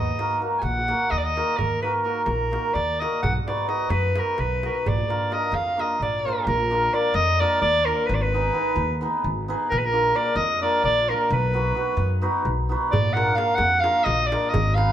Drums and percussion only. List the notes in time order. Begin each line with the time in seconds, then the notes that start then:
0.19 darbuka tek
0.30 darbuka tek
0.62 darbuka tek
0.88 darbuka tek
1.00 darbuka tek
1.10 darbuka tek
1.37 darbuka tek
1.48 darbuka tek
1.59 darbuka dum
1.83 darbuka tek
1.94 darbuka tek
2.26 darbuka tek
2.53 darbuka tek
2.64 darbuka tek
2.75 darbuka tek
3.02 darbuka tek
3.13 darbuka tek
3.24 darbuka dum
3.48 darbuka tek
3.59 darbuka tek
3.69 darbuka tek
3.90 darbuka tek
4.16 darbuka tek
4.27 darbuka tek
4.38 darbuka tek
4.63 darbuka tek
4.75 darbuka tek
4.86 darbuka dum
4.98 darbuka tek
5.10 darbuka tek
5.32 darbuka tek
5.43 darbuka tek
5.54 darbuka tek
5.79 darbuka tek
5.90 darbuka tek
6.02 darbuka tek, darbuka dum
6.15 darbuka tek
6.28 darbuka tek
12.93 darbuka dum
13.06 darbuka tek
13.17 darbuka tek
13.28 darbuka tek
13.38 darbuka tek
13.48 darbuka tek
13.58 darbuka tek
13.84 darbuka tek
13.95 darbuka tek
14.06 darbuka tek
14.32 darbuka tek
14.44 darbuka tek
14.54 darbuka dum
14.66 darbuka tek
14.78 darbuka tek
14.89 darbuka tek